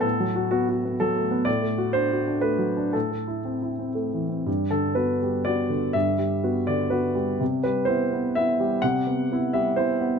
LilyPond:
<<
  \new Staff \with { instrumentName = "Grand piano" } { \time 3/4 \key g \major \tempo 4 = 124 a'4 fis'4 a'4 | d''4 c''4 b'4 | a'2 r4 | r8 a'8 b'4 d''4 |
e''4. d''8 b'4 | r8 b'8 c''4 e''4 | fis''4. e''8 c''4 | }
  \new Staff \with { instrumentName = "Grand piano" } { \time 3/4 \key g \major \tuplet 3/2 { <a, b>8 fis8 fis'8 b8 fis'8 b8 fis8 a8 b8 } | \tuplet 3/2 { a,8 a8 fis'8 d'8 fis'8 d'8 a8 fis8 d'8 } | \tuplet 3/2 { a,8 a8 e'8 c'8 e'8 c'8 a8 e8 c'8 } | g,8 d8 <b fis'>8 g8 <b fis'>8 d8 |
g,8 g8 <b fis'>8 d8 <b fis'>8 g8 | c8 g8 <b e'>8 b8 <b e'>8 g8 | c8 b8 <b e'>8 g8 <b e'>8 b8 | }
>>